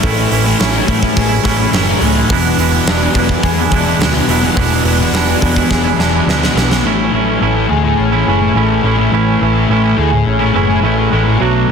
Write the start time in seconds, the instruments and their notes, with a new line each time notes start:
Already playing: clean electric guitar A3 C#4 G#4
0.02 picked electric bass A1, distorted electric guitar A2 E3 A3, clean electric guitar A2 E3 C#4 E4, kick, open hi-hat
0.30 picked electric bass A1, clean electric guitar E3 C#4 E4, open hi-hat
0.45 distorted electric guitar E3 A3, clean electric guitar C#4 E4
0.59 picked electric bass A1, distorted electric guitar A2 E3 A3, clean electric guitar A2 E3 C#4 E4, snare, open hi-hat
0.74 distorted electric guitar E3 A3
0.87 distorted electric guitar A2 E3 A3, picked electric bass A2, clean electric guitar E3 A3 C#4 E4, kick, open hi-hat
1.01 clean electric guitar C#4 E4, muted distorted electric guitar stroke, kick
1.16 picked electric bass A1, clean electric guitar G#4, kick, open hi-hat
1.29 clean electric guitar C#4 E4
1.43 picked electric bass A1, distorted electric guitar A2 E3 A3, clean electric guitar E3 C#4 E4, kick, snare, open hi-hat
1.59 clean electric guitar C#4 E4, muted distorted electric guitar stroke
1.72 picked electric bass F#1, distorted electric guitar A2 E3 A3, clean electric guitar A2 E3 C#4 E4, snare, open hi-hat
1.87 clean electric guitar C#4 E4
2.00 picked electric bass C#2, distorted electric guitar A2 E3 A3, clean electric guitar E3 G#3 A3 C#4, open hi-hat
2.04 clean electric guitar E4
2.14 distorted electric guitar E3 A3
2.29 picked electric bass E1, distorted electric guitar E2 B2 E3, clean electric guitar E2 B2 E3 G#3 B3 D4 E4, kick, open hi-hat
2.57 picked electric bass E1, clean electric guitar E3 G#3 D4 E4, open hi-hat
2.71 distorted electric guitar B2 E3, clean electric guitar G#3 D4 E4
2.75 clean electric guitar E3
2.85 picked electric bass E1, distorted electric guitar E2 B2, clean electric guitar E2 B2 E3 G#3 D4 E4, snare, open hi-hat
2.90 distorted electric guitar E3
3.00 distorted electric guitar B2 E3
3.14 picked electric bass E1, distorted electric guitar E2 B2 E3, clean electric guitar E3 G#3 B3 D4 E4, kick, open hi-hat
3.29 clean electric guitar E3 G#3 D4 E4, muted distorted electric guitar stroke, kick
3.43 picked electric bass E2, clean electric guitar G#4, kick, open hi-hat
3.58 clean electric guitar E3 G#3 D4 E4
3.70 picked electric bass E1, distorted electric guitar E2 B2 E3, clean electric guitar E3 G#3 D4, kick, open hi-hat
3.74 clean electric guitar E4
3.86 clean electric guitar E3 G#3 D4 E4, muted distorted electric guitar stroke
3.99 picked electric bass D2, distorted electric guitar E2 B2 E3, clean electric guitar E2 B2 E3 G#3 B3 D4 E4, snare, open hi-hat
4.14 clean electric guitar E3 G#3 D4 E4
4.27 picked electric bass E1, distorted electric guitar E2 B2, clean electric guitar E3 G#3 B3 D4 E4, open hi-hat
4.32 distorted electric guitar E3
4.43 distorted electric guitar B2 E3
4.56 picked electric bass E1, clean electric guitar E2 B2 E3 G#3 B3 D4 E4, distorted electric guitar E2 B2, kick, open hi-hat
4.60 distorted electric guitar E3
4.84 picked electric bass E1, clean electric guitar E3 G#3 D4 E4, open hi-hat
4.99 distorted electric guitar B2 E3, clean electric guitar E3 G#3 D4 E4
5.12 picked electric bass E1, distorted electric guitar E2 B2 E3, clean electric guitar E2 B2 E3 G#3 D4 E4, snare, open hi-hat
5.27 distorted electric guitar B2 E3
5.41 distorted electric guitar E2 B2 E3, picked electric bass E2, clean electric guitar E3 G#3 B3 D4 E4, kick, open hi-hat
5.56 clean electric guitar E3 G#3 D4 E4, muted distorted electric guitar stroke, kick
5.70 picked electric bass E1, clean electric guitar G#4, kick, snare
5.84 clean electric guitar E3 G#3 D4 E4
5.97 picked electric bass E1, distorted electric guitar E2 B2 E3, clean electric guitar E3 G#3 D4 E4, snare
6.13 clean electric guitar E3 G#3 D4 E4, muted distorted electric guitar stroke
6.26 picked electric bass D2, distorted electric guitar E2 B2 E3, clean electric guitar E2 B2 E3 G#3 B3 D4 E4, snare
6.43 clean electric guitar E3 G#3 D4 E4, snare
6.55 picked electric bass B1, distorted electric guitar E2 B2 E3, clean electric guitar E3 G#3 B3 D4 E4, snare
6.68 distorted electric guitar B2 E3, snare
6.83 picked electric bass A1, distorted electric guitar A2 E3 A3, clean electric guitar A2 E3 C#4
6.87 clean electric guitar E4
7.12 picked electric bass A1, clean electric guitar E3 A3 C#4 E4
7.26 clean electric guitar C#4 E4
7.40 picked electric bass A1, distorted electric guitar A2 E3 A3, clean electric guitar A2 E3 A3 C#4 E4
7.56 clean electric guitar C#4 E4
7.68 picked electric bass D2, distorted electric guitar A2 E3 A3, clean electric guitar G#4, muted clean electric guitar stroke
7.84 muted distorted electric guitar stroke
7.98 picked electric bass A1, clean electric guitar C#4
8.11 distorted electric guitar E3 A3, clean electric guitar C#4 E4
8.25 picked electric bass F#1, distorted electric guitar A2 E3, clean electric guitar E3 C#4 G#4
8.29 distorted electric guitar A3, clean electric guitar E4
8.40 muted distorted electric guitar stroke
8.54 picked electric bass A1, distorted electric guitar A2 E3 A3, clean electric guitar A2 E3 A3 C#4 E4
8.70 clean electric guitar C#4 E4
8.83 picked electric bass A1, distorted electric guitar A2 E3 A3, clean electric guitar E3 C#4 E4
8.97 distorted electric guitar E3 A3, clean electric guitar C#4 E4
9.11 picked electric bass A1, distorted electric guitar A2 E3 A3, clean electric guitar A2 E3 C#4 E4
9.41 picked electric bass A1, clean electric guitar E3 A3 C#4 E4
9.55 clean electric guitar C#4 E4
9.68 picked electric bass A1, distorted electric guitar A2 E3, clean electric guitar A2 E3 A3 C#4 E4
9.72 distorted electric guitar A3
9.84 clean electric guitar C#4 E4
9.97 picked electric bass D2, distorted electric guitar A2 E3 A3, clean electric guitar G#4, muted clean electric guitar stroke
10.12 muted distorted electric guitar stroke
10.26 picked electric bass A1, clean electric guitar C#4
10.39 distorted electric guitar E3 A3, clean electric guitar C#4 E4
10.53 picked electric bass F#1, distorted electric guitar A2 E3 A3, clean electric guitar E3 C#4 E4 G#4
10.68 muted distorted electric guitar stroke
10.81 picked electric bass A1, distorted electric guitar A2 E3 A3, clean electric guitar A2 E3 A3 C#4 E4
10.97 clean electric guitar C#4 E4
11.10 picked electric bass A1, distorted electric guitar A2 E3 A3, clean electric guitar E3 G#3 C#4 E4
11.24 distorted electric guitar E3 A3, clean electric guitar G#3 C#4 E4
11.38 picked electric bass B1, distorted electric guitar B2 F#3 B3, clean electric guitar B2 F#3 A3 D4 F#4